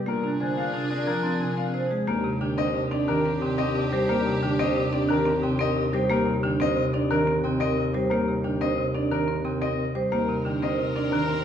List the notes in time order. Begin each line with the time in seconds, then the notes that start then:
Already playing: G3 G4
0.06 A#2 A#3 D4 G#4 A#4
0.23 C3 D4
0.40 D3 D4 C5 G#5
0.57 D4 F5
0.73 C3 D4
0.90 C4 D4 A#4 D5
1.07 F3 D4 A#4
1.23 C4 D4
1.40 C3 D4 A#4 G#5
1.57 C4 D4 F5
1.74 C3 D4 C5
1.90 G#3 G#4
2.07 D#2 A#3 D4 G4 A#4
2.24 C3
2.41 D3 D4 G5
2.58 C4 C5 D#5
2.75 C3
2.91 C4 D4 D5
3.08 D#3 A#4
3.26 C4
3.42 C3 C4 G5
3.58 C4 A#4 D#5
3.76 C3
3.92 G3 G4 C5
4.09 A#3 G4 A#4
4.26 C3
4.43 D3 D4 G5
4.59 C4 C5 D#5
4.76 C3
4.93 C4 D4 D5
5.09 D#3 A#4
5.25 C4
5.42 C3 C4 G5
5.59 C4 A#4 D#5
5.76 C3
5.93 G3 G4 C5
6.10 A#3 G4 A#4
6.26 C3
6.43 D3 D4 G5
6.60 C4 C5 D#5
6.77 C3
6.93 C4 D4 D5
7.10 D#3 A#4
7.27 C4
7.44 C3 C4 G5
7.60 C4 A#4 D#5
7.78 C3
7.93 G3 G4 C5
8.10 A#3 G4 A#4
8.28 C3
8.44 D3 D4 G5
8.61 C4 C5 D#5
8.78 C3
8.95 C4 D4 D5
9.11 D#3 A#4
9.28 C4
9.45 C3 C4 G5
9.61 C4 A#4 D#5
9.78 C3
9.95 G3 G4 C5
10.11 D#2 A#3 C4 G4 A#4
10.28 C3
10.45 D3 D4 G5
10.62 C4 C5 D#5
10.79 C3
10.96 C4 D4 D5
11.12 D#3 A#4
11.30 C4